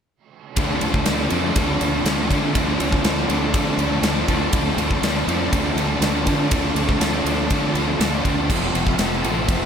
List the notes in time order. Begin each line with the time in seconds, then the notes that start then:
0.56 D2 D3 F3 A3 C4 D4 F4 D5 A5, kick, ride
0.81 D2 F3 A3 D4, ride
0.94 kick
1.06 D2 D3 F3 A3, snare, ride
1.10 D4
1.19 snare
1.30 F2 D3 F3 A3 D4, ride
1.56 D2 D3 F3 A3 D4, kick, ride
1.81 D2 F3 A3 D4, ride
2.05 D2 D3 F3 A3 D4, snare, ride
2.29 D3 F3 A3 D4, kick, ride
2.54 D2 D3 F3 A3 D4, kick, ride
2.79 D2 F3 A3 D4, ride
2.92 kick
3.03 D2 D3 F3 A3 D4, snare, ride
3.18 snare
3.28 D2 D3 F3 A3 D4, ride
3.54 D3 F3 A3 D4, kick, ride
3.78 D2 A3 D4, ride
3.82 F3
4.02 D2 D3 F3 A3, snare, ride
4.07 D4
4.28 D2 D3 F3 A3 D4, kick, ride
4.32 D3
4.53 D2 D3 F3 A3 D4, kick, ride
4.77 D2 A3 D4, ride
4.81 F3
4.91 kick
5.02 D2 D3 F3 A3 D4, snare, ride
5.17 snare
5.27 F2 D3 F3 A3 D4, ride
5.52 D2 D3 F3 A3 D4, kick, ride
5.75 D2 A3 D4, ride
5.79 F3
6.00 D2 D3 F3 A3, snare, ride
6.05 D4
6.27 D3 F3 A3 D4, kick, ride
6.51 D2 D3 F3 A3 D4, kick, ride
6.75 D2 A3 D4, ride
6.79 F3
6.89 kick
7.00 D2 D3 F3 A3 D4, snare, ride
7.25 D2 F3 A3 D4, ride
7.29 D3
7.50 D3 F3 A3 D4, kick, ride
7.74 D2 A3 D4, ride
7.78 F3
8.00 D2 D3 F3 A3 D4, snare, ride
8.25 D2 D3 F3 A3 D4, kick, ride
8.49 F1 F2 C3 F3 A3 C4 E5, kick, crash
8.74 F1 F3 A3 C4, ride
8.87 kick
8.98 F1 F2 C3 F3 A3 C4, snare, ride
9.13 snare
9.23 A1 F2 C3 F3 A3 C4, ride
9.48 F1 F2 C3 F3 A3 C4, kick, ride